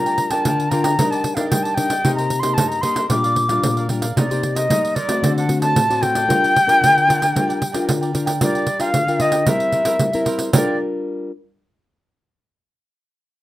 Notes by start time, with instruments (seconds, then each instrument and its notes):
Already playing: nylon-string guitar G3 D4 F4 A#4, flute A#5
0.06 cavaquinho A#4 D5 G5, pandeiro
0.18 muted cavaquinho stroke, pandeiro
0.30 nylon-string guitar D4 F4 A#4, cavaquinho A#4 D5 G5, flute A5, pandeiro
0.45 nylon-string guitar D3, cavaquinho F4 A#4 D5 G5, pandeiro
0.60 pandeiro
0.70 nylon-string guitar D4 F4 A#4, cavaquinho F4 A#4 D5 G5, flute A#5, pandeiro
0.84 cavaquinho A#4 D5 G5, pandeiro
0.98 nylon-string guitar G3 D4 D#4 A#4, cavaquinho D4 G4 D5 D#5, pandeiro
1.10 cavaquinho D5 D#5, flute A5, pandeiro
1.15 cavaquinho G4
1.24 muted cavaquinho stroke, pandeiro
1.35 nylon-string guitar D4 D#4 A#4, cavaquinho D5, flute F5, pandeiro
1.39 cavaquinho G4 D#5
1.49 nylon-string guitar G3, flute G5, pandeiro
1.63 cavaquinho D5 D#5, flute A5, pandeiro
1.67 cavaquinho G4
1.74 cavaquinho D4 G4, nylon-string guitar D4 D#4 A#4, flute G5, pandeiro
1.79 cavaquinho D5 D#5
1.90 cavaquinho G4 D5 D#5, pandeiro
2.04 nylon-string guitar C3 A#3 D#4 G4, cavaquinho D#4 A#4 C5 D#5, pandeiro
2.15 cavaquinho C5 D#5, flute A#5, pandeiro
2.19 cavaquinho A#4
2.30 pandeiro
2.40 nylon-string guitar A#3 D#4, cavaquinho D#5, flute C6, pandeiro
2.44 nylon-string guitar G4, cavaquinho A#4 C5
2.54 cavaquinho D#4 A#4, flute A5
2.58 nylon-string guitar G2, cavaquinho C5 D#5, pandeiro
2.67 flute A#5
2.72 pandeiro
2.81 nylon-string guitar A#3 D#4 G4, cavaquinho D#4 A#4 C5 D#5, flute C6, pandeiro
2.96 cavaquinho A#4 C5 D#5, pandeiro
3.09 nylon-string guitar A#2 G3 D4 F4, cavaquinho G4 A#4 D5 F5, flute D6, pandeiro
3.24 cavaquinho A#4 D5 F5, pandeiro
3.35 muted cavaquinho stroke, pandeiro
3.49 nylon-string guitar G3 D4 F4, cavaquinho A#4 D5 F5, pandeiro
3.63 nylon-string guitar A#2, pandeiro
3.77 cavaquinho A#4 D5 F5, pandeiro
3.89 nylon-string guitar G3 D4 F4, cavaquinho G4 A#4 D5 F5, pandeiro
4.02 cavaquinho A#4 D5 F5, pandeiro
4.16 nylon-string guitar C3 A#3 D#4 G4, cavaquinho D#4 A#4 C5 D#5, flute D5, pandeiro
4.30 nylon-string guitar A#3 D#4 G4, cavaquinho A#4 C5 D#5, pandeiro
4.43 muted cavaquinho stroke, pandeiro
4.55 cavaquinho A#4 C5 D#5, flute D#5, pandeiro
4.69 nylon-string guitar G3 A#3 D#4 G4, cavaquinho D#4 A#4 C5 D#5, pandeiro
4.85 pandeiro
4.95 cavaquinho D#4 A#4 C5 D#5, flute D5, pandeiro
5.08 nylon-string guitar A3 C4 F#4, cavaquinho A#4 C5 D#5, pandeiro
5.22 nylon-string guitar D3, cavaquinho F#4 A4 C5 D5, pandeiro
5.37 cavaquinho A4 C5 D5, flute F#5, pandeiro
5.49 nylon-string guitar A3 C4 F#4, muted cavaquinho stroke, pandeiro
5.61 cavaquinho A4 C5 D5, flute A5, pandeiro
5.75 nylon-string guitar A2, pandeiro
5.89 nylon-string guitar A3 C4 F#4, cavaquinho A4 C5 D5, pandeiro
6.01 cavaquinho F#4 A4 C5 D5, flute G5, pandeiro
6.15 cavaquinho A4 C5 D5, pandeiro
6.28 nylon-string guitar G3 D4 F4 A#4, cavaquinho F4 A#4 D5, pandeiro
6.32 cavaquinho G5
6.43 cavaquinho A#4 D5 G5, pandeiro
6.55 muted cavaquinho stroke, pandeiro
6.67 nylon-string guitar D4 F4 A#4, cavaquinho A#4 D5 G5, pandeiro
6.81 nylon-string guitar D3, cavaquinho F4 A#4 D5 G5, pandeiro
6.98 pandeiro
7.07 nylon-string guitar D4 F4 A#4, cavaquinho F4 A#4 D5 G5, pandeiro
7.20 cavaquinho A#4 D5 G5, pandeiro
7.34 nylon-string guitar G3 D4 F4 A#4, cavaquinho F4 A#4 D5 G5, pandeiro
7.48 cavaquinho A#4 D5 G5, pandeiro
7.61 muted cavaquinho stroke, pandeiro
7.72 nylon-string guitar D4 F4 A#4, cavaquinho A#4 D5 G5, pandeiro
7.88 nylon-string guitar D3, pandeiro
8.01 cavaquinho A#4 D5 G5, pandeiro
8.13 nylon-string guitar D4 F4 A#4, cavaquinho F4 A#4 D5 G5, pandeiro
8.26 cavaquinho A#4 D5 G5, pandeiro
8.41 nylon-string guitar G3 D4 F4 A#4, cavaquinho F4 A#4 D5 G5, flute D5, pandeiro
8.55 cavaquinho A#4 G5, pandeiro
8.67 pandeiro
8.79 nylon-string guitar D4 F4 A#4, cavaquinho F4 A#4 D5 G5, flute F5, pandeiro
8.94 nylon-string guitar D3, pandeiro
9.08 nylon-string guitar D4 F4 A#4, cavaquinho A#4 D5 G5, pandeiro
9.20 cavaquinho F4 A#4 D5 G5, flute D#5, pandeiro
9.32 cavaquinho A#4 D5 G5, pandeiro
9.46 nylon-string guitar G3 C4 E4 A#4, cavaquinho E4 A#4 C5 E5, flute E5, pandeiro
9.60 pandeiro
9.72 cavaquinho E4 A#4 C5 E5, pandeiro
9.85 nylon-string guitar C4 E4 A#4, cavaquinho E4 A#4 C5 E5, pandeiro
9.99 nylon-string guitar G3, pandeiro
10.12 nylon-string guitar C4 E4 A#4, cavaquinho A#4 C5 E5, pandeiro
10.25 cavaquinho E4 A#4 C5 E5, pandeiro
10.38 cavaquinho A#4 C5 E5, pandeiro
10.53 nylon-string guitar G3 D4 F4 A#4, cavaquinho F4 A#4 D5 G5, flute D5, pandeiro